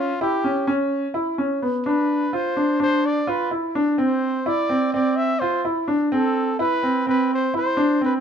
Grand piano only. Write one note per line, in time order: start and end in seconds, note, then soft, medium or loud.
0.00 0.11 C#4 medium
0.21 0.40 E4 medium
0.44 0.63 C#4 medium
0.67 1.05 C#4 medium
1.14 1.33 E4 medium
1.38 1.57 C#4 medium
1.62 1.81 B3 medium
1.86 2.23 D4 medium
2.33 2.52 F4 medium
2.57 2.75 D4 medium
2.80 3.17 D4 medium
3.27 3.46 F4 medium
3.51 3.70 E4 medium
3.75 3.94 D4 medium
3.98 4.35 C4 medium
4.46 4.65 E4 medium
4.69 4.88 C4 medium
4.94 5.31 C4 medium
5.42 5.60 F4 medium
5.65 5.83 E4 medium
5.88 6.07 D4 medium
6.12 6.49 C4 medium
6.59 6.78 E4 medium
6.83 7.02 C4 medium
7.07 7.44 C4 medium
7.54 7.72 E4 medium
7.77 7.96 D4 medium
8.01 8.20 C4 medium